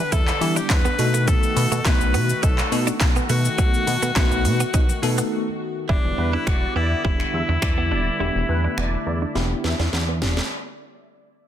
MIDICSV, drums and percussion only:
0, 0, Header, 1, 2, 480
1, 0, Start_track
1, 0, Key_signature, 1, "minor"
1, 0, Tempo, 576923
1, 1062, Time_signature, 4, 2, 24, 8
1, 9550, End_track
2, 0, Start_track
2, 0, Title_t, "Drums"
2, 102, Note_on_c, 9, 36, 97
2, 102, Note_on_c, 9, 42, 89
2, 102, Note_on_c, 9, 82, 85
2, 185, Note_off_c, 9, 36, 0
2, 185, Note_off_c, 9, 42, 0
2, 185, Note_off_c, 9, 82, 0
2, 228, Note_on_c, 9, 39, 63
2, 231, Note_on_c, 9, 82, 56
2, 312, Note_off_c, 9, 39, 0
2, 314, Note_off_c, 9, 82, 0
2, 345, Note_on_c, 9, 46, 68
2, 345, Note_on_c, 9, 82, 46
2, 428, Note_off_c, 9, 46, 0
2, 428, Note_off_c, 9, 82, 0
2, 470, Note_on_c, 9, 82, 78
2, 553, Note_off_c, 9, 82, 0
2, 580, Note_on_c, 9, 38, 108
2, 581, Note_on_c, 9, 36, 121
2, 581, Note_on_c, 9, 42, 77
2, 581, Note_on_c, 9, 82, 78
2, 582, Note_on_c, 9, 39, 127
2, 663, Note_off_c, 9, 38, 0
2, 664, Note_off_c, 9, 36, 0
2, 664, Note_off_c, 9, 42, 0
2, 664, Note_off_c, 9, 82, 0
2, 665, Note_off_c, 9, 39, 0
2, 709, Note_on_c, 9, 82, 53
2, 792, Note_off_c, 9, 82, 0
2, 822, Note_on_c, 9, 46, 88
2, 822, Note_on_c, 9, 82, 61
2, 905, Note_off_c, 9, 46, 0
2, 905, Note_off_c, 9, 82, 0
2, 950, Note_on_c, 9, 82, 79
2, 1033, Note_off_c, 9, 82, 0
2, 1062, Note_on_c, 9, 36, 124
2, 1062, Note_on_c, 9, 42, 78
2, 1062, Note_on_c, 9, 82, 82
2, 1145, Note_off_c, 9, 36, 0
2, 1146, Note_off_c, 9, 42, 0
2, 1146, Note_off_c, 9, 82, 0
2, 1191, Note_on_c, 9, 82, 54
2, 1274, Note_off_c, 9, 82, 0
2, 1303, Note_on_c, 9, 46, 84
2, 1303, Note_on_c, 9, 82, 59
2, 1387, Note_off_c, 9, 46, 0
2, 1387, Note_off_c, 9, 82, 0
2, 1431, Note_on_c, 9, 82, 81
2, 1514, Note_off_c, 9, 82, 0
2, 1542, Note_on_c, 9, 36, 125
2, 1542, Note_on_c, 9, 38, 99
2, 1542, Note_on_c, 9, 42, 85
2, 1542, Note_on_c, 9, 82, 84
2, 1544, Note_on_c, 9, 39, 123
2, 1625, Note_off_c, 9, 36, 0
2, 1625, Note_off_c, 9, 38, 0
2, 1625, Note_off_c, 9, 42, 0
2, 1625, Note_off_c, 9, 82, 0
2, 1627, Note_off_c, 9, 39, 0
2, 1671, Note_on_c, 9, 82, 51
2, 1754, Note_off_c, 9, 82, 0
2, 1782, Note_on_c, 9, 46, 81
2, 1782, Note_on_c, 9, 82, 59
2, 1866, Note_off_c, 9, 46, 0
2, 1866, Note_off_c, 9, 82, 0
2, 1908, Note_on_c, 9, 82, 76
2, 1991, Note_off_c, 9, 82, 0
2, 2022, Note_on_c, 9, 36, 101
2, 2022, Note_on_c, 9, 42, 87
2, 2022, Note_on_c, 9, 82, 87
2, 2105, Note_off_c, 9, 36, 0
2, 2105, Note_off_c, 9, 42, 0
2, 2105, Note_off_c, 9, 82, 0
2, 2148, Note_on_c, 9, 39, 65
2, 2150, Note_on_c, 9, 82, 57
2, 2231, Note_off_c, 9, 39, 0
2, 2234, Note_off_c, 9, 82, 0
2, 2265, Note_on_c, 9, 46, 68
2, 2265, Note_on_c, 9, 82, 47
2, 2348, Note_off_c, 9, 46, 0
2, 2348, Note_off_c, 9, 82, 0
2, 2390, Note_on_c, 9, 82, 78
2, 2473, Note_off_c, 9, 82, 0
2, 2499, Note_on_c, 9, 38, 106
2, 2500, Note_on_c, 9, 36, 125
2, 2500, Note_on_c, 9, 42, 77
2, 2500, Note_on_c, 9, 82, 75
2, 2501, Note_on_c, 9, 39, 127
2, 2582, Note_off_c, 9, 38, 0
2, 2583, Note_off_c, 9, 42, 0
2, 2583, Note_off_c, 9, 82, 0
2, 2584, Note_off_c, 9, 36, 0
2, 2584, Note_off_c, 9, 39, 0
2, 2629, Note_on_c, 9, 82, 54
2, 2712, Note_off_c, 9, 82, 0
2, 2741, Note_on_c, 9, 46, 84
2, 2741, Note_on_c, 9, 82, 62
2, 2824, Note_off_c, 9, 46, 0
2, 2824, Note_off_c, 9, 82, 0
2, 2870, Note_on_c, 9, 82, 79
2, 2953, Note_off_c, 9, 82, 0
2, 2982, Note_on_c, 9, 36, 124
2, 2982, Note_on_c, 9, 42, 83
2, 2982, Note_on_c, 9, 82, 81
2, 3065, Note_off_c, 9, 36, 0
2, 3065, Note_off_c, 9, 42, 0
2, 3065, Note_off_c, 9, 82, 0
2, 3111, Note_on_c, 9, 82, 53
2, 3194, Note_off_c, 9, 82, 0
2, 3223, Note_on_c, 9, 46, 84
2, 3223, Note_on_c, 9, 82, 61
2, 3306, Note_off_c, 9, 46, 0
2, 3306, Note_off_c, 9, 82, 0
2, 3349, Note_on_c, 9, 82, 80
2, 3432, Note_off_c, 9, 82, 0
2, 3460, Note_on_c, 9, 42, 84
2, 3460, Note_on_c, 9, 82, 85
2, 3461, Note_on_c, 9, 36, 122
2, 3461, Note_on_c, 9, 38, 103
2, 3462, Note_on_c, 9, 39, 126
2, 3543, Note_off_c, 9, 42, 0
2, 3543, Note_off_c, 9, 82, 0
2, 3544, Note_off_c, 9, 38, 0
2, 3545, Note_off_c, 9, 36, 0
2, 3546, Note_off_c, 9, 39, 0
2, 3590, Note_on_c, 9, 82, 52
2, 3673, Note_off_c, 9, 82, 0
2, 3702, Note_on_c, 9, 46, 84
2, 3702, Note_on_c, 9, 82, 57
2, 3786, Note_off_c, 9, 46, 0
2, 3786, Note_off_c, 9, 82, 0
2, 3828, Note_on_c, 9, 82, 74
2, 3912, Note_off_c, 9, 82, 0
2, 3942, Note_on_c, 9, 36, 101
2, 3942, Note_on_c, 9, 42, 92
2, 3942, Note_on_c, 9, 82, 86
2, 4025, Note_off_c, 9, 42, 0
2, 4025, Note_off_c, 9, 82, 0
2, 4026, Note_off_c, 9, 36, 0
2, 4071, Note_on_c, 9, 82, 57
2, 4154, Note_off_c, 9, 82, 0
2, 4185, Note_on_c, 9, 46, 65
2, 4185, Note_on_c, 9, 82, 48
2, 4268, Note_off_c, 9, 46, 0
2, 4268, Note_off_c, 9, 82, 0
2, 4310, Note_on_c, 9, 82, 77
2, 4393, Note_off_c, 9, 82, 0
2, 4902, Note_on_c, 9, 36, 120
2, 4986, Note_off_c, 9, 36, 0
2, 5382, Note_on_c, 9, 36, 119
2, 5383, Note_on_c, 9, 26, 118
2, 5465, Note_off_c, 9, 36, 0
2, 5467, Note_off_c, 9, 26, 0
2, 5863, Note_on_c, 9, 36, 90
2, 5946, Note_off_c, 9, 36, 0
2, 5989, Note_on_c, 9, 26, 57
2, 6072, Note_off_c, 9, 26, 0
2, 6341, Note_on_c, 9, 26, 121
2, 6341, Note_on_c, 9, 36, 107
2, 6424, Note_off_c, 9, 36, 0
2, 6425, Note_off_c, 9, 26, 0
2, 7303, Note_on_c, 9, 26, 118
2, 7386, Note_off_c, 9, 26, 0
2, 7783, Note_on_c, 9, 38, 51
2, 7866, Note_off_c, 9, 38, 0
2, 8022, Note_on_c, 9, 38, 62
2, 8105, Note_off_c, 9, 38, 0
2, 8148, Note_on_c, 9, 38, 60
2, 8232, Note_off_c, 9, 38, 0
2, 8262, Note_on_c, 9, 38, 82
2, 8345, Note_off_c, 9, 38, 0
2, 8502, Note_on_c, 9, 38, 93
2, 8585, Note_off_c, 9, 38, 0
2, 8629, Note_on_c, 9, 38, 80
2, 8712, Note_off_c, 9, 38, 0
2, 9550, End_track
0, 0, End_of_file